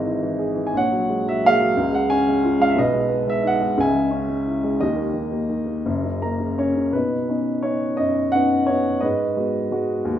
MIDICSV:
0, 0, Header, 1, 2, 480
1, 0, Start_track
1, 0, Tempo, 677201
1, 533, Time_signature, 6, 3, 24, 8
1, 3407, Tempo, 709220
1, 5807, Tempo, 678733
1, 7108, End_track
2, 0, Start_track
2, 0, Title_t, "Grand piano"
2, 0, Program_c, 0, 0
2, 0, Control_c, 0, 64, 127
2, 0, Note_on_c, 0, 32, 66
2, 0, Note_on_c, 0, 44, 67
2, 0, Note_on_c, 0, 52, 44
2, 0, Note_on_c, 0, 71, 59
2, 0, Note_on_c, 0, 75, 81
2, 40, Note_on_c, 0, 64, 52
2, 152, Note_off_c, 0, 52, 0
2, 163, Note_on_c, 0, 52, 44
2, 277, Note_on_c, 0, 68, 46
2, 388, Note_off_c, 0, 52, 0
2, 398, Note_on_c, 0, 52, 42
2, 462, Note_off_c, 0, 71, 0
2, 472, Note_on_c, 0, 80, 69
2, 498, Note_off_c, 0, 32, 0
2, 505, Note_off_c, 0, 44, 0
2, 515, Note_off_c, 0, 64, 0
2, 519, Note_off_c, 0, 68, 0
2, 523, Note_off_c, 0, 52, 0
2, 524, Note_on_c, 0, 34, 51
2, 524, Note_on_c, 0, 46, 62
2, 527, Note_off_c, 0, 80, 0
2, 533, Note_off_c, 0, 75, 0
2, 542, Control_c, 0, 64, 0
2, 546, Note_on_c, 0, 73, 59
2, 547, Note_on_c, 0, 78, 90
2, 649, Control_c, 0, 64, 127
2, 649, Note_on_c, 0, 54, 50
2, 775, Note_on_c, 0, 56, 48
2, 887, Note_off_c, 0, 54, 0
2, 897, Note_on_c, 0, 54, 48
2, 911, Note_on_c, 0, 76, 82
2, 915, Note_off_c, 0, 78, 0
2, 1026, Note_on_c, 0, 58, 49
2, 1028, Note_off_c, 0, 76, 0
2, 1038, Note_on_c, 0, 77, 102
2, 1045, Note_on_c, 0, 68, 57
2, 1123, Note_off_c, 0, 54, 0
2, 1134, Note_on_c, 0, 54, 53
2, 1223, Note_off_c, 0, 34, 0
2, 1230, Note_off_c, 0, 46, 0
2, 1234, Note_off_c, 0, 73, 0
2, 1241, Note_off_c, 0, 56, 0
2, 1251, Note_off_c, 0, 54, 0
2, 1254, Note_off_c, 0, 58, 0
2, 1254, Note_on_c, 0, 37, 68
2, 1254, Note_on_c, 0, 49, 68
2, 1265, Control_c, 0, 64, 0
2, 1364, Note_on_c, 0, 56, 51
2, 1378, Note_on_c, 0, 78, 82
2, 1390, Control_c, 0, 64, 127
2, 1395, Note_off_c, 0, 77, 0
2, 1487, Note_on_c, 0, 80, 99
2, 1495, Note_on_c, 0, 61, 56
2, 1498, Note_off_c, 0, 78, 0
2, 1609, Note_off_c, 0, 56, 0
2, 1619, Note_on_c, 0, 56, 46
2, 1716, Note_off_c, 0, 68, 0
2, 1727, Note_on_c, 0, 65, 54
2, 1827, Note_off_c, 0, 56, 0
2, 1838, Note_on_c, 0, 56, 51
2, 1854, Note_on_c, 0, 77, 89
2, 1856, Note_off_c, 0, 80, 0
2, 1911, Note_on_c, 0, 76, 70
2, 1924, Note_off_c, 0, 77, 0
2, 1937, Note_off_c, 0, 37, 0
2, 1944, Note_off_c, 0, 49, 0
2, 1951, Note_on_c, 0, 47, 68
2, 1953, Note_off_c, 0, 61, 0
2, 1957, Note_on_c, 0, 35, 66
2, 1958, Note_off_c, 0, 56, 0
2, 1958, Note_off_c, 0, 65, 0
2, 1962, Note_off_c, 0, 76, 0
2, 1974, Note_on_c, 0, 71, 60
2, 1974, Note_on_c, 0, 75, 85
2, 1975, Control_c, 0, 64, 0
2, 2074, Note_on_c, 0, 56, 50
2, 2104, Control_c, 0, 64, 127
2, 2187, Note_on_c, 0, 59, 57
2, 2303, Note_off_c, 0, 56, 0
2, 2314, Note_on_c, 0, 56, 50
2, 2336, Note_on_c, 0, 76, 89
2, 2338, Note_off_c, 0, 75, 0
2, 2432, Note_on_c, 0, 63, 57
2, 2453, Note_off_c, 0, 76, 0
2, 2461, Note_on_c, 0, 78, 85
2, 2550, Note_off_c, 0, 56, 0
2, 2561, Note_on_c, 0, 56, 56
2, 2653, Note_off_c, 0, 35, 0
2, 2656, Note_off_c, 0, 47, 0
2, 2661, Note_off_c, 0, 71, 0
2, 2663, Note_off_c, 0, 59, 0
2, 2672, Note_off_c, 0, 63, 0
2, 2676, Note_on_c, 0, 49, 78
2, 2677, Note_on_c, 0, 37, 70
2, 2680, Note_off_c, 0, 56, 0
2, 2696, Control_c, 0, 64, 0
2, 2697, Note_on_c, 0, 80, 87
2, 2702, Note_off_c, 0, 78, 0
2, 2702, Note_on_c, 0, 76, 61
2, 2796, Note_on_c, 0, 56, 48
2, 2800, Control_c, 0, 64, 127
2, 2913, Note_on_c, 0, 61, 61
2, 3026, Note_off_c, 0, 56, 0
2, 3037, Note_on_c, 0, 56, 48
2, 3163, Note_on_c, 0, 64, 51
2, 3276, Note_off_c, 0, 56, 0
2, 3287, Note_on_c, 0, 56, 53
2, 3375, Note_off_c, 0, 37, 0
2, 3382, Note_off_c, 0, 49, 0
2, 3386, Note_off_c, 0, 61, 0
2, 3388, Note_off_c, 0, 76, 0
2, 3398, Note_off_c, 0, 64, 0
2, 3403, Note_on_c, 0, 39, 61
2, 3404, Note_off_c, 0, 56, 0
2, 3404, Note_on_c, 0, 51, 60
2, 3406, Note_on_c, 0, 75, 79
2, 3410, Note_on_c, 0, 67, 56
2, 3415, Control_c, 0, 64, 0
2, 3434, Note_off_c, 0, 80, 0
2, 3509, Note_on_c, 0, 58, 50
2, 3526, Control_c, 0, 64, 127
2, 3619, Note_off_c, 0, 51, 0
2, 3629, Note_on_c, 0, 51, 46
2, 3743, Note_off_c, 0, 58, 0
2, 3753, Note_on_c, 0, 58, 50
2, 3862, Note_off_c, 0, 51, 0
2, 3872, Note_on_c, 0, 51, 45
2, 3977, Note_off_c, 0, 58, 0
2, 3987, Note_on_c, 0, 58, 45
2, 4094, Note_off_c, 0, 39, 0
2, 4113, Note_off_c, 0, 51, 0
2, 4114, Note_off_c, 0, 58, 0
2, 4116, Note_on_c, 0, 30, 66
2, 4119, Note_on_c, 0, 42, 69
2, 4133, Control_c, 0, 64, 0
2, 4241, Note_on_c, 0, 49, 47
2, 4253, Control_c, 0, 64, 127
2, 4344, Note_off_c, 0, 75, 0
2, 4346, Note_off_c, 0, 67, 0
2, 4363, Note_on_c, 0, 58, 55
2, 4365, Note_on_c, 0, 82, 61
2, 4472, Note_off_c, 0, 49, 0
2, 4482, Note_on_c, 0, 49, 45
2, 4595, Note_off_c, 0, 82, 0
2, 4609, Note_on_c, 0, 61, 52
2, 4612, Note_on_c, 0, 73, 59
2, 4713, Note_off_c, 0, 49, 0
2, 4723, Note_on_c, 0, 49, 43
2, 4825, Note_off_c, 0, 30, 0
2, 4831, Note_off_c, 0, 42, 0
2, 4837, Note_off_c, 0, 58, 0
2, 4837, Note_off_c, 0, 73, 0
2, 4842, Note_on_c, 0, 47, 54
2, 4843, Note_on_c, 0, 71, 67
2, 4845, Note_off_c, 0, 49, 0
2, 4845, Note_off_c, 0, 61, 0
2, 4862, Note_on_c, 0, 63, 47
2, 4864, Control_c, 0, 64, 0
2, 4975, Control_c, 0, 64, 127
2, 5079, Note_off_c, 0, 63, 0
2, 5085, Note_on_c, 0, 59, 42
2, 5089, Note_on_c, 0, 63, 40
2, 5092, Note_on_c, 0, 61, 37
2, 5310, Note_off_c, 0, 59, 0
2, 5313, Note_off_c, 0, 61, 0
2, 5315, Note_off_c, 0, 63, 0
2, 5315, Note_on_c, 0, 73, 68
2, 5320, Note_on_c, 0, 59, 43
2, 5324, Note_on_c, 0, 61, 36
2, 5325, Note_on_c, 0, 63, 43
2, 5340, Note_off_c, 0, 71, 0
2, 5547, Note_on_c, 0, 75, 77
2, 5564, Note_on_c, 0, 42, 61
2, 5570, Note_off_c, 0, 73, 0
2, 5706, Note_off_c, 0, 59, 0
2, 5708, Note_off_c, 0, 61, 0
2, 5709, Note_off_c, 0, 63, 0
2, 5784, Note_on_c, 0, 78, 93
2, 5804, Note_off_c, 0, 75, 0
2, 5804, Note_on_c, 0, 61, 41
2, 5806, Note_on_c, 0, 59, 49
2, 5810, Note_on_c, 0, 63, 55
2, 6028, Note_on_c, 0, 73, 75
2, 6034, Note_off_c, 0, 59, 0
2, 6040, Note_off_c, 0, 61, 0
2, 6040, Note_off_c, 0, 63, 0
2, 6045, Note_on_c, 0, 59, 46
2, 6049, Note_off_c, 0, 78, 0
2, 6050, Note_on_c, 0, 61, 38
2, 6051, Note_on_c, 0, 63, 46
2, 6242, Note_off_c, 0, 59, 0
2, 6246, Note_off_c, 0, 61, 0
2, 6246, Note_off_c, 0, 63, 0
2, 6261, Note_off_c, 0, 47, 0
2, 6269, Note_on_c, 0, 75, 73
2, 6271, Note_off_c, 0, 42, 0
2, 6278, Note_on_c, 0, 71, 59
2, 6282, Note_on_c, 0, 44, 55
2, 6291, Note_off_c, 0, 73, 0
2, 6305, Control_c, 0, 64, 0
2, 6418, Control_c, 0, 64, 127
2, 6522, Note_on_c, 0, 56, 41
2, 6524, Note_on_c, 0, 59, 41
2, 6527, Note_on_c, 0, 66, 42
2, 6760, Note_off_c, 0, 56, 0
2, 6762, Note_off_c, 0, 59, 0
2, 6766, Note_off_c, 0, 66, 0
2, 6770, Note_on_c, 0, 56, 47
2, 6772, Note_on_c, 0, 59, 43
2, 6776, Note_on_c, 0, 66, 54
2, 7006, Note_on_c, 0, 39, 74
2, 7108, Note_off_c, 0, 39, 0
2, 7108, Note_off_c, 0, 44, 0
2, 7108, Note_off_c, 0, 56, 0
2, 7108, Note_off_c, 0, 59, 0
2, 7108, Note_off_c, 0, 66, 0
2, 7108, Note_off_c, 0, 71, 0
2, 7108, Note_off_c, 0, 75, 0
2, 7108, End_track
0, 0, End_of_file